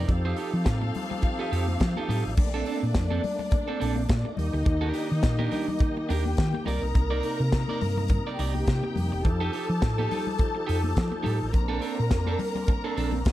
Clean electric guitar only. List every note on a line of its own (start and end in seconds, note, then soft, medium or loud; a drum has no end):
0.00 0.10 D5 medium
0.09 muted clean electric guitar stroke soft
0.25 0.36 D#4 medium
0.25 0.37 G4 medium
0.25 0.38 C5 medium
0.38 0.55 D#4 medium
0.38 0.52 G4 medium
0.38 0.51 A4 medium
0.52 muted clean electric guitar stroke soft
0.65 muted clean electric guitar stroke soft
0.82 muted clean electric guitar stroke soft
1.10 muted clean electric guitar stroke soft
1.22 muted clean electric guitar stroke soft
1.39 1.50 D#4 medium
1.39 1.51 G4 medium
1.39 1.51 A4 medium
1.51 1.72 D#4 medium
1.51 1.67 G4 medium
1.51 1.66 A4 medium
1.68 muted clean electric guitar stroke soft
1.80 muted clean electric guitar stroke medium
1.97 2.08 D#4 medium
1.97 2.08 G4 medium
1.97 2.09 A4 medium
2.09 2.30 D#4 medium
2.09 2.24 G4 medium
2.09 2.24 A4 loud
2.25 muted clean electric guitar stroke soft
2.38 muted clean electric guitar stroke soft
2.54 2.66 C4 medium
2.54 2.66 D4 medium
2.54 2.66 A4 medium
2.67 2.84 C4 medium
2.67 2.83 D4 medium
2.67 2.82 A4 medium
2.83 muted clean electric guitar stroke soft
2.95 muted clean electric guitar stroke medium
3.11 3.22 C4 medium
3.11 3.22 D4 medium
3.11 3.22 A4 medium
3.23 muted clean electric guitar stroke soft
3.39 muted clean electric guitar stroke medium
3.52 muted clean electric guitar stroke soft
3.68 3.79 C4 medium
3.68 3.79 D4 medium
3.68 3.80 A4 medium
3.80 4.01 C4 medium
3.80 3.96 D4 medium
3.80 3.96 A4 loud
3.97 muted clean electric guitar stroke soft
4.09 muted clean electric guitar stroke medium
4.25 muted clean electric guitar stroke medium
4.53 muted clean electric guitar stroke soft
4.66 muted clean electric guitar stroke soft
4.81 4.93 D4 medium
4.81 4.93 G4 medium
4.81 4.94 A#4 medium
4.94 5.12 D4 medium
4.94 5.09 G4 medium
4.94 5.08 A#4 medium
5.09 muted clean electric guitar stroke medium
5.23 muted clean electric guitar stroke medium
5.39 5.50 D4 medium
5.39 5.51 G4 medium
5.39 5.51 A#4 medium
5.51 5.69 D4 medium
5.51 5.67 G4 medium
5.51 5.67 A#4 medium
5.68 muted clean electric guitar stroke medium
5.80 muted clean electric guitar stroke soft
5.97 muted clean electric guitar stroke soft
6.09 6.30 D4 medium
6.09 6.25 G4 loud
6.09 6.24 A#4 loud
6.25 muted clean electric guitar stroke soft
6.55 muted clean electric guitar stroke soft
6.66 6.87 D#4 medium
6.66 6.83 A#4 medium
6.66 6.82 D5 medium
6.83 muted clean electric guitar stroke soft
6.94 muted clean electric guitar stroke soft
7.10 7.23 D#4 medium
7.10 7.24 A#4 medium
7.10 7.24 D5 loud
7.24 7.41 D#4 medium
7.24 7.40 A#4 medium
7.24 7.39 D5 medium
7.40 muted clean electric guitar stroke soft
7.53 muted clean electric guitar stroke soft
7.69 7.81 D#4 medium
7.69 7.81 A#4 medium
7.69 7.81 D5 medium
7.82 muted clean electric guitar stroke soft
7.98 muted clean electric guitar stroke soft
8.10 muted clean electric guitar stroke soft
8.27 8.38 D#4 medium
8.27 8.38 A#4 medium
8.27 8.39 D5 medium
8.39 8.60 D#4 medium
8.39 8.55 A#4 medium
8.39 8.54 D5 loud
8.55 muted clean electric guitar stroke soft
8.68 muted clean electric guitar stroke soft
8.84 muted clean electric guitar stroke soft
9.12 muted clean electric guitar stroke soft
9.25 muted clean electric guitar stroke soft
9.40 9.52 D#4 medium
9.40 9.53 G4 medium
9.40 9.53 A4 medium
9.53 9.70 D#4 medium
9.53 9.69 G4 medium
9.53 9.68 A4 medium
9.69 muted clean electric guitar stroke medium
9.82 muted clean electric guitar stroke soft
9.98 10.10 D#4 medium
9.98 10.11 G4 medium
9.98 10.11 A4 medium
10.11 10.28 D#4 medium
10.11 10.27 G4 medium
10.11 10.25 A4 medium
10.27 muted clean electric guitar stroke soft
10.39 muted clean electric guitar stroke soft
10.55 muted clean electric guitar stroke medium
10.67 10.89 D#4 medium
10.67 10.82 G4 medium
10.67 10.81 A4 medium
10.83 muted clean electric guitar stroke medium
11.12 muted clean electric guitar stroke medium
11.23 11.45 D#4 medium
11.23 11.40 G4 medium
11.23 11.39 A4 loud
11.40 muted clean electric guitar stroke soft
11.53 muted clean electric guitar stroke soft
11.68 11.80 C4 medium
11.68 11.81 D4 medium
11.68 11.82 A4 medium
11.81 11.99 C4 medium
11.81 11.98 D4 medium
11.81 11.97 A4 medium
11.98 muted clean electric guitar stroke soft
12.11 muted clean electric guitar stroke soft
12.27 12.39 C4 medium
12.27 12.40 D4 medium
12.27 12.40 A4 medium
12.40 muted clean electric guitar stroke soft
12.56 muted clean electric guitar stroke medium
12.69 muted clean electric guitar stroke soft
12.84 12.95 C4 medium
12.84 12.96 D4 medium
12.84 12.97 A4 medium
12.96 13.18 C4 medium
12.96 13.14 D4 medium
12.96 13.13 A4 medium
13.14 muted clean electric guitar stroke soft
13.27 muted clean electric guitar stroke soft